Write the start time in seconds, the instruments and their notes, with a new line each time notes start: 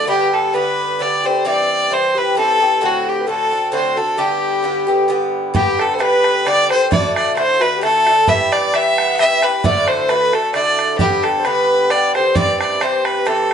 0.07 bouzouki G2 D3 B3 G4, accordion G4, fiddle G4
0.33 accordion A4, fiddle A4
0.53 bouzouki G2 D3 B3 G4, fiddle B4, accordion B4
0.99 bouzouki G2 D3 B3 G4, accordion D5, fiddle D5
1.24 bouzouki D3 B3 G4, fiddle C5
1.45 bouzouki G2 E3 C4 G4, fiddle D5, accordion D5
1.71 accordion D5
1.90 bouzouki G2 E3 C4 G4, accordion C5, fiddle C5
2.15 bouzouki E3 C4 G4, accordion B4, fiddle B4
2.35 bouzouki G2 E3 C4 G4, accordion A4, fiddle A4
2.60 bouzouki E3 C4 G4
2.81 bouzouki A2 D3 C4 F#4, accordion F#4
2.85 fiddle F#4
3.06 accordion G4, fiddle G4
3.20 accordion B4
3.27 bouzouki A2 D3 C4 F#4, accordion A4, fiddle A4
3.51 bouzouki D3 C4 F#4
3.71 bouzouki A2 D3 C4 F#4, accordion C5, fiddle C5
3.96 bouzouki D3 C4 F#4, accordion A4, fiddle A4
4.17 bouzouki G2 D3 B3 G4, accordion G4, fiddle G4
4.63 bouzouki G2 D3 B3 G4
4.87 bouzouki D3 B3 G4
5.08 bouzouki G2 D3 B3 G4
5.54 bouzouki G2 D3 B3 G4, accordion G4, fiddle G4, bodhran
5.79 accordion A4, fiddle A4, bodhran
5.94 fiddle C5
5.99 bouzouki G2 D3 B3 G4, accordion B4, bodhran
6.03 fiddle B4
6.24 bodhran
6.45 bouzouki G2 D3 B3 G4, accordion D5, fiddle D5, bodhran
6.69 bouzouki D3 B3 G4, fiddle C5, accordion C5, bodhran
6.91 bouzouki A2 D3 A3 F#4, accordion D5, fiddle D5, bodhran
7.16 fiddle D5, bodhran
7.35 bouzouki A2 D3 A3 F#4, fiddle C5, accordion C5, bodhran
7.60 bouzouki D3 A3 F#4, accordion B4, fiddle B4, bodhran
7.76 accordion G4
7.81 bouzouki A2 D3 A3 F#4, accordion A4, fiddle A4, bodhran
8.06 bouzouki D3 A3 F#4, bodhran
8.27 bouzouki G2 E3 B3 G4, fiddle E5, accordion E5, bodhran
8.52 fiddle D5, accordion D5, bodhran
8.72 bouzouki G2 E3 B3 G4, accordion E5, fiddle E5, bodhran
8.98 accordion F#5, bodhran
9.03 accordion F#5
9.07 accordion F#5
9.18 bouzouki G2 E3 B3 G4, accordion E5, fiddle E5, bodhran
9.42 bouzouki E3 B3 G4, accordion B4, fiddle B4, bodhran
9.64 bouzouki A2 D3 A3 F#4, accordion D5, fiddle D5, bodhran
9.87 accordion C5, fiddle C5, bodhran
10.08 bouzouki A2 D3 A3 F#4, accordion B4, fiddle B4, bodhran
10.33 bouzouki D3 A3 F#4, accordion A4, fiddle A4, bodhran
10.54 bouzouki A2 D3 A3 F#4, accordion D5, fiddle D5, bodhran
10.79 bodhran
10.98 bouzouki G2 D3 B3 G4, fiddle G4, accordion G4, bodhran
11.23 fiddle A4, accordion A4, bodhran
11.38 accordion C5
11.44 bouzouki G2 D3 B3 G4, fiddle B4, accordion B4, bodhran
11.90 bouzouki G2 D3 B3 G4, accordion D5, fiddle D5, bodhran
12.14 bouzouki D3 B3 G4, accordion C5, fiddle C5, bodhran
12.35 bouzouki G2 E3 C4 G4, fiddle D5, accordion D5, bodhran
12.59 fiddle D5, accordion D5, bodhran
12.81 bouzouki G2 E3 C4 G4, accordion C5, fiddle C5, bodhran
13.05 fiddle B4, accordion B4, bodhran
13.20 accordion B4
13.26 bouzouki G2 E3 C4 G4, fiddle A4, accordion A4, bodhran